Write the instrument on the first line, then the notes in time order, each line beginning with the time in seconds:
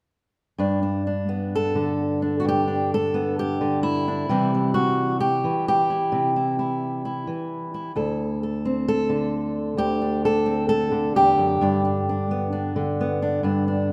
steel-string acoustic guitar
0.58 G2 D4
0.83 D4
1.07 D4
1.29 B3
1.55 A4
1.75 D3
2.22 D4
2.40 F#4
2.44 G2
2.48 G4
2.68 D4
2.94 A4
3.14 B3
3.39 G4
3.61 D3
3.83 E4
4.08 D4
4.29 C3 E3 G3
4.54 G3
4.74 F#4
5.20 G4
5.44 E3
5.68 G4
5.90 E4
6.12 C3
6.36 E4
6.59 E4
7.05 E4
7.27 E3
7.74 E4
7.96 D2 A4
8.43 A4
8.65 C4
8.88 A4
9.09 D3
9.77 D2 G4
10.02 D4
10.25 A4
10.46 C4
10.69 A4
10.91 D3
11.15 E2 G4
11.38 F#2
11.61 G2 D4
11.85 D4
12.09 D4
12.31 B3
12.53 D4
12.76 D3
13.01 B3
13.22 D4
13.43 G2 D4
13.68 D4